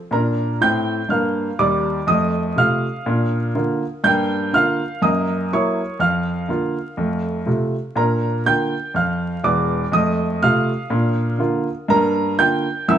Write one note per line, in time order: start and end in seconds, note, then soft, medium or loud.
0.11 0.50 A#2 medium
0.11 0.52 D4 medium
0.11 0.58 A#4 medium
0.11 0.61 A#5 medium
0.61 1.00 A2 medium
0.61 1.01 C4 medium
0.61 1.07 G5 medium
0.61 1.10 G6 loud
1.09 1.48 G2 medium
1.09 1.49 A#3 medium
1.09 1.56 F5 medium
1.09 1.58 F6 medium
1.59 1.98 D#2 medium
1.59 1.98 G3 medium
1.59 2.05 D5 medium
1.59 2.08 D6 medium
2.07 2.49 F2 medium
2.07 2.36 A3 soft
2.07 2.54 D#5 medium
2.07 2.56 D#6 medium
2.56 2.83 C3 soft
2.56 2.84 A3 soft
2.56 2.84 F4 soft
2.56 3.82 F5 medium
2.56 3.86 F6 medium
3.06 3.47 A#2 medium
3.06 3.34 D4 soft
3.55 3.82 D3 medium
3.55 3.82 A#3 medium
3.55 3.82 F4 medium
4.04 4.45 G2 medium
4.04 4.32 A#3 medium
4.04 4.51 G5 medium
4.04 4.53 G6 loud
4.53 4.80 D3 soft
4.53 4.80 A#3 soft
4.53 4.80 F4 medium
4.53 5.00 F5 medium
4.53 5.02 F6 loud
5.02 5.43 F#2 medium
5.02 5.29 A#3 soft
5.02 5.48 D#5 medium
5.02 5.51 D#6 medium
5.53 5.79 F#3 soft
5.53 5.79 A#3 soft
5.53 5.79 E4 medium
5.53 5.98 C#5 medium
5.53 6.01 C#6 medium
5.99 6.41 F2 medium
5.99 7.44 F5 medium
5.99 7.47 F6 medium
6.48 6.75 D3 soft
6.48 6.75 A#3 soft
6.48 6.77 F4 medium
6.97 7.39 F2 medium
6.97 7.25 A3 soft
7.46 7.73 C3 soft
7.46 7.73 A3 soft
7.46 7.74 F4 soft
7.96 8.37 A#2 medium
7.96 8.24 D4 soft
7.96 8.42 A#4 medium
7.96 8.45 A#5 medium
8.46 8.73 D3 soft
8.46 8.72 A#3 soft
8.46 8.73 F4 soft
8.46 8.92 G5 medium
8.46 8.95 G6 medium
8.94 9.36 F2 medium
8.94 9.41 F5 medium
8.94 9.44 F6 medium
9.44 9.83 E1 medium
9.44 9.83 E2 medium
9.44 9.90 D5 medium
9.44 9.93 D6 medium
9.92 10.34 F2 medium
9.92 10.21 A3 soft
9.92 10.39 D#5 medium
9.92 10.42 D#6 medium
10.42 10.69 C3 soft
10.42 10.69 A3 medium
10.42 10.70 F4 medium
10.42 11.67 F5 medium
10.42 11.71 F6 loud
10.90 11.32 A#2 medium
10.90 11.18 D4 soft
11.38 11.65 D3 soft
11.38 11.66 A#3 soft
11.38 11.67 F4 medium
11.88 12.30 G2 medium
11.88 12.16 A#3 soft
11.88 12.35 A#4 medium
11.88 12.38 A#5 loud
12.38 12.65 D3 medium
12.38 12.65 A#3 medium
12.38 12.66 F4 medium
12.38 12.84 G5 medium
12.38 12.87 G6 loud
12.88 12.98 F#2 medium
12.88 12.98 E3 soft
12.88 12.98 A#3 medium
12.88 12.98 E4 soft
12.88 12.98 E5 medium
12.88 12.98 E6 medium